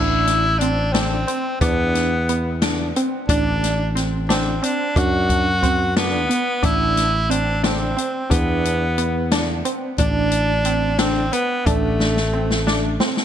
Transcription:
Already playing: A1 D4 E4
0.27 snare, closed hi-hat
0.58 C4 D4, closed hi-hat
0.93 C4 D4, snare, closed hi-hat
1.27 C4, closed hi-hat
1.61 E2 B3 D4, kick, closed hi-hat
1.95 snare, closed hi-hat
2.29 B3, closed hi-hat
2.62 D4, snare, closed hi-hat
2.96 C4, closed hi-hat
3.28 A1 D4, kick, closed hi-hat
3.64 snare, closed hi-hat
3.95 C4, snare, closed hi-hat
4.29 C4 D4, snare, closed hi-hat
4.62 C4 D4, closed hi-hat
4.96 F#2 D4 F#4, kick, closed hi-hat
5.29 kick, closed hi-hat
5.63 C4, kick, closed hi-hat
5.97 B3 D4, snare, closed hi-hat
6.29 B3, closed hi-hat
6.63 A1 D4 E4, kick, closed hi-hat
6.97 snare, closed hi-hat
7.30 C4 D4, closed hi-hat
7.63 C4 D4, snare, closed hi-hat
7.97 C4, closed hi-hat
8.30 E2 B3 D4, kick, closed hi-hat
8.65 closed hi-hat
8.98 B3, closed hi-hat
9.32 D4, snare, closed hi-hat
9.65 C4, closed hi-hat
9.98 A1 D4, kick, closed hi-hat
10.31 closed hi-hat
10.65 C4, closed hi-hat
10.99 C4 D4, snare, closed hi-hat
11.33 B3, closed hi-hat
11.66 A1 A3 D4, kick, closed hi-hat
12.00 snare
12.17 snare
12.33 C4
12.51 snare
12.67 D4, snare
13.00 C4, snare
13.17 snare

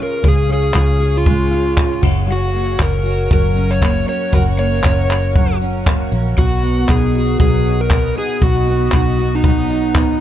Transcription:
Already playing: C#3 G#3 C#4 F4 G#4 C#5 F5 C#6
0.03 A#4
0.23 C#2 C#3 G#4, kick
0.28 G#4
0.49 C#4, tambourine
0.53 G#4
0.74 C#2 F4, kick, clap
0.78 G#4
1.00 G#4, tambourine
1.18 F4
1.26 G#3, kick
1.51 F4, tambourine
1.76 C#4, kick, clap
2.01 F#1 F#2 A#4 F#5, kick, tambourine, crash
2.27 F#2 F#4
2.32 F#4
2.53 A#3, tambourine
2.78 F#1 C#4, kick, clap
2.82 A#4
3.04 F#4, tambourine
3.30 F#1 F#3 A#4, kick
3.55 C#4, tambourine
3.71 C#5
3.81 A#3, kick, clap
4.07 C#4 C#5, tambourine
4.32 F#1 F#2 F#4 A#4, kick
4.57 A#3 C#5, tambourine
4.83 F#1 C#4, kick, clap
5.10 F#4, clap, tambourine
5.35 F#3, kick
5.60 C#4, tambourine
5.86 A#3, kick, clap
6.12 A#1 C#4, tambourine
6.37 B1 B2 B3 F#4 D#5 D#6, kick
6.63 B3, tambourine
6.89 B1 D#4 G#4, kick, clap
7.15 F#4, tambourine
7.40 B1 F#3 G#4, kick
7.65 D#4, tambourine
7.81 A#4
7.90 B3, kick, clap
8.15 D#4 G#4, tambourine
8.42 B1 B2 F#4, kick
8.67 B3, tambourine
8.92 B1 D#4, kick, clap
8.96 F#4
9.18 F#4, tambourine
9.35 D#4
9.44 F#3, kick
9.69 D#4, tambourine
9.95 B3, kick, clap

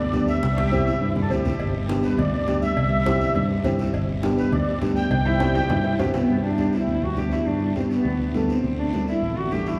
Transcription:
0.00 D5
0.13 D2 B3 D4 G4, high conga, short guiro
0.28 E5, short guiro
0.43 C2, high conga, long guiro
0.57 G4, high conga
0.72 C4 E4 G4, low conga, short guiro
0.86 E4, short guiro
1.00 G2 E4, long guiro
1.16 low conga
1.22 A4
1.30 D2 C4 E4 G4, short guiro
1.45 low conga, short guiro
1.60 G1, cowbell, high conga, long guiro
1.89 B3 D4 G4, cowbell, high conga, short guiro
2.03 B4, high conga, short guiro
2.18 D2 D5, cowbell, low conga, long guiro
2.33 D5, high conga
2.47 D2 B3 D4 G4, cowbell, high conga, low timbale, short guiro
2.62 E5, high conga, short guiro
2.77 C2, cowbell, high conga, long guiro
3.06 C4 E4 G4, cowbell, high conga, short guiro
3.21 short guiro
3.35 G2, cowbell, low conga, long guiro
3.50 high conga
3.64 G2 C4 E4 G4, cowbell, high conga, low conga, low timbale, short guiro
3.79 high conga, short guiro
3.93 G1, cowbell, high conga, long guiro
4.23 B3 D4 G4, cowbell, high conga, short guiro
4.38 B4, short guiro
4.52 D2 D5, cowbell, low conga, long guiro
4.67 high conga
4.81 D2 B3 D4 G4, cowbell, high conga, low timbale, short guiro
4.96 G5, short guiro
5.10 C2, cowbell, high conga, high timbale, long guiro
5.25 E4, high timbale
5.40 C4 E4 G4, cowbell, high conga, high timbale, short guiro
5.55 G4, high conga, low timbale, short guiro
5.69 G2 E4, cowbell, low conga, low timbale, long guiro
5.84 high conga, low timbale
5.92 E4
5.99 G2 C4 E4 F#4 G4, cowbell, high conga, low timbale, short guiro
6.14 B3, low timbale, short guiro
6.28 G2, high conga, long guiro
6.44 D4
6.58 B3 D4 G4, high conga, short guiro
6.73 E4, short guiro
6.87 D2, high conga, long guiro
7.02 D2 F#4
7.16 D2 B3 D4 G4, high conga, short guiro
7.31 E4, short guiro
7.46 G2 D4, high conga, long guiro
7.76 B3 C4 D4 G4, high conga, short guiro
7.90 B3, short guiro
8.05 D2, high conga, long guiro
8.20 D2
8.34 D2 B3 D4 A4, high conga, short guiro
8.49 C4, short guiro
8.64 D2, high conga, long guiro
8.79 D4
8.93 A3 D4 F#4, high conga, short guiro
9.07 E4, short guiro
9.22 A1, high conga, long guiro
9.37 A1 F#4
9.51 A1 A3 D4 F#4 G4, high conga, short guiro
9.66 E4, short guiro

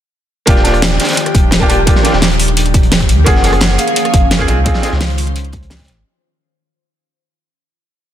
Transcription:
0.46 D#1 D#3 F3 A#3 D4 F4 G4, kick, closed hi-hat
0.56 snare
0.62 A#3 D4 F4, closed hi-hat
0.66 G4, snare
0.74 cross-stick, closed hi-hat
0.82 snare, closed hi-hat
0.92 snare
1.00 snare, closed hi-hat
1.04 snare, closed hi-hat
1.09 snare, closed hi-hat
1.13 snare, closed hi-hat
1.17 closed hi-hat
1.26 cross-stick, closed hi-hat
1.35 D#1, kick, closed hi-hat
1.51 snare, closed hi-hat
1.59 A#3 D4 F4 G4, kick
1.68 A#3 D4 F4 G4, closed hi-hat
1.85 A#3 D4 F4 G4, kick, closed hi-hat
1.96 snare
2.02 A#3 D4 F4 G4, snare, closed hi-hat
2.13 D#1, snare
2.22 snare, closed hi-hat, open hi-hat
2.31 closed hi-hat
2.40 closed hi-hat, open hi-hat
2.48 closed hi-hat
2.57 closed hi-hat
2.66 closed hi-hat
2.74 kick, closed hi-hat
2.83 closed hi-hat
2.92 snare, closed hi-hat
3.00 kick, closed hi-hat
3.09 D#2, closed hi-hat
3.24 F#1 F3 A#3 C#4 F4 G#4 F#5, kick, closed hi-hat
3.35 snare
3.40 A#3 C#4, snare, closed hi-hat
3.45 F3 G#4
3.53 cross-stick, closed hi-hat
3.61 snare, closed hi-hat
3.70 snare
3.78 F5, closed hi-hat
3.88 closed hi-hat
3.96 closed hi-hat
4.05 cross-stick, closed hi-hat
4.14 F#1, kick, closed hi-hat
4.31 snare, closed hi-hat
4.38 A#3 C#4 F4 G#4, kick
4.47 C#2 D#3 C4 C#4 D#4 F4 G#4 C5, closed hi-hat
4.64 C4 D#4 F4 G#4, kick, closed hi-hat
4.73 snare
4.82 C4 D#4 F4 G#4, snare, closed hi-hat
4.92 C#2, snare
5.01 snare, closed hi-hat, open hi-hat
5.10 closed hi-hat
5.18 closed hi-hat, open hi-hat
5.27 closed hi-hat
5.36 closed hi-hat
5.45 closed hi-hat
5.53 kick, closed hi-hat
5.63 closed hi-hat
5.70 snare, closed hi-hat
5.75 snare, closed hi-hat
5.79 kick, snare, closed hi-hat
5.84 snare, closed hi-hat
5.88 G#1, closed hi-hat

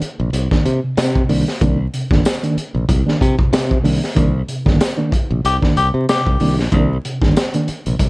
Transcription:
0.02 muted fingered electric bass stroke, closed hi-hat
0.20 A#1 C3
0.33 C2, closed hi-hat
0.51 D#3 A#3 D4, kick, snare
0.65 C3, closed hi-hat
0.84 C3
0.97 C3 A#3 D4, snare, closed hi-hat, tambourine
1.15 C3, kick
1.29 C2 D#3 A#3 D4, open hi-hat
1.48 snare
1.61 C2 D#3 A#3 D4, kick, closed hi-hat
1.94 C3, closed hi-hat
2.11 G1 D#3 A#3 D4, kick, snare
2.25 snare, closed hi-hat, tambourine
2.43 D#3 A#3 D4, closed hi-hat
2.57 muted fingered electric bass stroke, closed hi-hat
2.74 A#1 C3
2.89 C2, kick, closed hi-hat
3.06 D#3 A#3 D4, snare
3.21 C3, kick, closed hi-hat
3.39 C3, kick
3.53 C3 A#3 D4, snare, closed hi-hat, tambourine
3.70 C3, kick
3.83 C2 D#3 A#3 D4, open hi-hat
4.04 snare
4.15 C2 D#3 A#3 D4, kick, closed hi-hat
4.48 C3, closed hi-hat
4.65 G1 D#3 A#3 D4, kick, snare
4.81 snare, closed hi-hat, tambourine
4.97 D#3 A#3 D4
5.12 muted fingered electric bass stroke, kick, closed hi-hat
5.30 A#1 C3
5.45 C2 G4, closed hi-hat
5.61 D#3 A#3 D4, kick, snare
5.76 C2 G4, closed hi-hat
5.94 C3
6.09 C3 G4, snare, closed hi-hat, tambourine
6.27 C2, kick
6.40 C2 D#3 A#3 D4, open hi-hat
6.58 A#1 A#3 D4, snare
6.72 C2 D#3 A#3 D4, kick, closed hi-hat
7.05 C3, closed hi-hat
7.22 G1 D#3 A#3 D4, kick, snare
7.37 snare, closed hi-hat, tambourine
7.54 D#3 A#3 D4, closed hi-hat
7.68 muted fingered electric bass stroke, closed hi-hat
7.86 A#1 C3, closed hi-hat
7.99 C2, kick, closed hi-hat

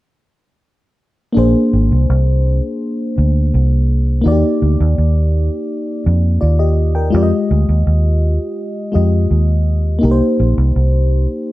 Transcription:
1.33 A#3 D4
1.37 A#1 G#4 C5
1.73 G#1
1.92 C2
2.10 C2
3.18 D2
3.54 C2
4.21 A#3 D#4
4.26 D#2 F#4 D5
4.32 G4
4.62 D2
4.80 D#2
4.98 D#2
6.06 F2
6.41 D#2 F4 D5
6.59 G4 D#5
6.95 A#4 G5
7.10 G#3 F4
7.14 F2 G4 D5
7.23 D#5
7.51 D2
7.69 D#2
7.87 D#2
8.92 F2 G#3 F4 G4 D#5
9.31 D#2
9.99 A#3 D#4
10.03 C2 G4 A#4
10.11 C5
10.40 A#1
10.58 C2
10.76 C2

